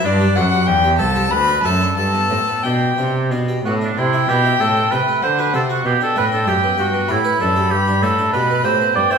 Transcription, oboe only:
0.04 0.38 D4 medium
0.37 0.69 F#4 loud
0.68 0.98 G4 medium
0.99 1.31 A4 medium
1.32 1.67 B4 medium
1.65 1.96 A4 loud
1.97 2.63 A4 medium
2.65 3.30 G4 medium
3.65 3.73 F#4 medium
3.84 4.00 D4 medium
3.98 4.30 E4 loud
4.29 4.62 G4 loud
4.61 4.93 A4 medium
4.91 5.23 B4 loud
5.23 5.40 C5 loud
5.39 5.54 B4 medium
5.55 5.62 A4 medium
5.71 5.87 F#4 medium
5.86 6.01 G4 loud
6.03 6.17 A4 loud
6.18 6.24 B4 loud
6.34 6.50 A4 medium
6.48 6.79 G4 loud
6.79 7.12 F#4 medium
7.11 7.40 E4 loud
7.41 7.72 A4 loud
7.71 8.04 G4 medium
8.03 8.32 A4 loud
8.32 8.63 B4 medium
8.64 8.95 C5 loud
8.95 9.13 D5 loud
9.11 9.18 C5 loud

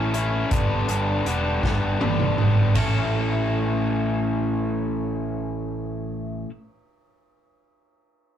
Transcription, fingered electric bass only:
0.00 0.43 A1 medium
0.51 0.84 G1 medium
0.89 1.22 G1 medium
1.26 1.59 E1 medium
1.63 1.96 G1 medium
2.01 2.34 G1 medium
2.39 2.72 G1 medium
2.75 6.45 A1 medium

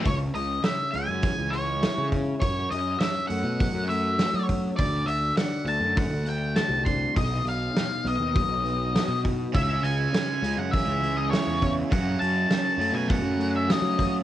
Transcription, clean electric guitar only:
0.04 1.53 C#3 medium
0.63 2.11 C#4 medium
0.93 1.51 G#3 medium
1.22 2.41 E3 medium
1.52 2.41 G#3 medium
1.81 2.41 E4 medium
2.12 2.42 C#4 medium
2.41 3.89 F#2 medium
2.99 4.47 C#4 medium
3.29 3.88 A3 medium
3.60 4.77 F#3 medium
3.89 4.79 A3 medium
4.19 6.55 F#4 medium
4.48 4.78 C#4 medium
4.77 5.94 D3 medium
5.37 6.85 D4 medium
5.67 6.25 A3 medium
5.96 7.15 D3 medium
6.26 7.15 A3 medium
6.56 7.16 F#4 medium
6.87 7.16 D4 medium
7.15 8.64 B2 medium
7.74 9.22 D#4 medium
8.04 8.63 B3 medium
8.34 9.53 F#3 medium
8.64 9.53 B3 medium
8.93 9.53 F#4 medium
9.24 9.53 D#4 medium
9.53 11.02 C#3 medium
10.13 11.60 C#4 medium
10.43 11.01 G#3 medium
10.73 11.91 E3 medium
11.02 11.91 G#3 medium
11.33 11.91 E4 medium
11.61 11.91 C#4 medium
11.90 13.39 F#2 medium
12.50 13.96 C#4 medium
12.79 13.36 A3 medium
13.07 14.23 F#3 medium
13.37 14.23 A3 medium
13.68 14.23 F#4 medium
13.97 14.23 C#4 medium

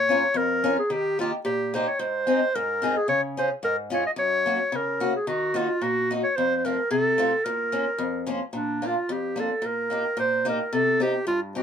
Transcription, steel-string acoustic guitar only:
0.00 0.23 A#2 medium
0.09 0.22 C#4 medium
0.09 0.22 F4 soft
0.09 0.23 A#4 medium
0.34 0.77 F2 medium
0.64 0.76 C#4 medium
0.64 0.77 F4 medium
0.64 0.77 A#4 medium
0.90 1.32 D#3 medium
1.19 1.31 A#3 medium
1.19 1.31 D#4 soft
1.19 1.32 G4 medium
1.45 1.86 A#2 medium
1.74 1.85 A#3 medium
1.74 1.86 D#4 medium
1.74 1.86 G4 medium
1.99 2.40 G#2 medium
2.27 2.39 C4 medium
2.27 2.39 D#4 medium
2.27 2.39 G#4 medium
2.55 2.95 G#2 medium
2.82 2.93 C4 medium
2.82 2.94 D#4 soft
2.82 2.94 G#4 medium
3.08 3.49 C#3 medium
3.37 3.48 C#4 soft
3.37 3.48 F4 soft
3.37 3.49 G#4 medium
3.63 4.04 G#2 medium
3.90 4.02 C#4 medium
3.90 4.03 F4 medium
3.90 4.03 G#4 medium
4.16 4.58 F#2 medium
4.46 4.58 A#3 medium
4.46 4.58 C#4 soft
4.46 4.58 F#4 medium
4.72 5.13 C#3 medium
5.00 5.12 A#3 soft
5.00 5.12 C#4 soft
5.00 5.12 F#4 medium
5.27 5.68 D#3 medium
5.54 5.66 A#3 medium
5.54 5.66 D#4 medium
5.54 5.67 F#4 medium
5.81 6.22 A#2 medium
6.11 6.22 A#3 soft
6.11 6.22 D#4 soft
6.11 6.22 F#4 medium
6.38 6.78 F2 medium
6.65 6.76 A3 medium
6.65 6.76 C4 soft
6.65 6.77 F4 soft
6.91 7.31 C3 medium
7.18 7.30 A3 medium
7.18 7.30 C4 medium
7.18 7.30 F4 medium
7.46 7.86 A#2 medium
7.72 7.84 A#3 medium
7.72 7.84 C#4 soft
7.72 7.84 F4 soft
7.98 8.40 F2 medium
8.27 8.39 A#3 medium
8.27 8.39 C#4 soft
8.27 8.39 F4 medium
8.53 8.95 A#2 medium
8.82 8.94 A#3 soft
8.82 8.94 D4 soft
8.82 8.94 F4 soft
9.09 9.50 F2 medium
9.36 9.48 A#3 medium
9.36 9.49 D4 soft
9.36 9.49 F4 medium
9.62 10.04 A#2 medium
9.90 10.03 A#3 soft
9.90 10.03 D#4 soft
9.90 10.04 G4 medium
10.17 10.59 A#2 medium
10.45 10.58 A#3 medium
10.45 10.58 D#4 soft
10.45 10.58 G4 medium
10.73 11.14 C3 medium
11.00 11.12 C4 soft
11.00 11.13 D#4 soft
11.00 11.13 G4 medium
11.27 11.63 G2 medium
11.55 11.63 C4 medium
11.55 11.63 D#4 soft
11.55 11.63 G4 medium

